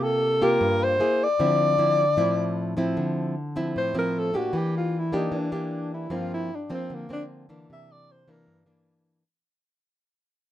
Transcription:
Already playing: C3 A#3 F4 G4
0.03 A4
0.42 A#3 F4 G4 A#4
0.61 G2
0.83 C5
1.00 A#3 E4 G#4
1.24 D5
1.39 D3 F3 C4 E4
1.78 F3 C4 E4
2.17 A2 F3 C4 E4
2.77 F3 C4 E4
2.97 D3
3.56 F3 C4 E4
3.76 A2 C5
3.94 F3 C4 E4 A#4
4.19 A4
4.34 A#3 D4 F#4 G4
4.53 E3
4.58 G4
4.77 F4
4.99 E4
5.12 A#3 D4 D#4 G4
5.32 E3 D4
5.52 A#3 D4 G4
5.93 E4
6.10 G2 F3 A#3 C4
6.15 F4
6.34 E4
6.55 D4
6.70 F3 A#3 C4
6.74 C4
6.90 D3
6.94 A#3
7.09 F3 A#3 C4 D4
7.49 E3 A#3 D4
7.70 C3 E5
7.92 D5
8.11 C5
8.28 E3 A#3 D4 A#4
8.47 G2
8.66 E3 A#3 D4

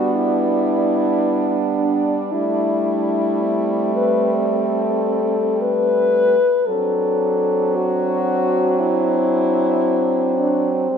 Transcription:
Already playing: G3 B3 D4 F#4
0.15 E4
1.78 D4
2.32 G3 A3 E4
3.42 C4
3.96 B4
4.51 A4
5.61 B4
6.67 F#3 C4 D4 A4
7.75 F#4
8.80 E4
10.38 D4
10.91 G3 D4

